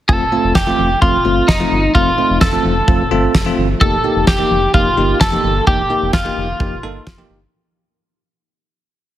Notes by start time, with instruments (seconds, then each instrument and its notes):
0.09 analog synth bass F1, tine electric piano A3 C4 F4, clean electric guitar A4, kick
0.32 tine electric piano A3 C4 F4
0.44 analog synth bass F1
0.55 analog synth bass F1, clean electric guitar G4, kick, snare
0.67 tine electric piano A3 C4 F4
0.79 analog synth bass F1
1.02 analog synth bass F1, tine electric piano A3 C4 F4, clean electric guitar F4, kick
1.25 analog synth bass G1, tine electric piano A3 C4 F4
1.48 analog synth bass F1, clean electric guitar D#4, kick, snare
1.60 tine electric piano A3 C4 F4
1.72 analog synth bass G1
1.95 analog synth bass F1, tine electric piano A3 C4 F4, clean electric guitar F4, kick
2.18 tine electric piano A3 C4 D#4
2.30 analog synth bass F1
2.41 analog synth bass F1, clean electric guitar A4, kick, snare
2.53 tine electric piano A3 C4 F4
2.65 analog synth bass F1
2.88 analog synth bass F1, tine electric piano A3 C4 F4, kick
3.11 analog synth bass G1, tine electric piano A3 C4 F4
3.35 analog synth bass F1, kick, snare
3.46 tine electric piano A3 C4 F4
3.58 analog synth bass G1
3.81 analog synth bass F1, tine electric piano A#3 D#4 G4, clean electric guitar A4, kick
4.04 tine electric piano A#3 D#4 G4
4.16 analog synth bass F1
4.27 analog synth bass F1, clean electric guitar G4, kick, snare
4.39 tine electric piano A#3 D#4 G4
4.51 analog synth bass F1
4.74 analog synth bass F1, tine electric piano A#3 D#4 G4, clean electric guitar F4, kick
4.97 analog synth bass G1, tine electric piano A#3 D#4 G4
5.21 analog synth bass F1, clean electric guitar A4, kick, snare
5.32 tine electric piano A#3 D#4 G4
5.44 analog synth bass G1
5.67 analog synth bass F1, tine electric piano A#3 D#4 G4, clean electric guitar G4, kick
5.90 tine electric piano A#3 D#4 G4
6.02 analog synth bass F1
6.13 analog synth bass F1, clean electric guitar F4, kick, snare
6.25 tine electric piano A#3 D#4 G4
6.37 analog synth bass F1
6.60 analog synth bass F1, tine electric piano A#3 D#4 G4, kick
6.83 analog synth bass G1, tine electric piano A#3 D#4 A4
7.07 analog synth bass F1, kick, snare
7.18 tine electric piano A#3 D#4 G4
7.30 analog synth bass G1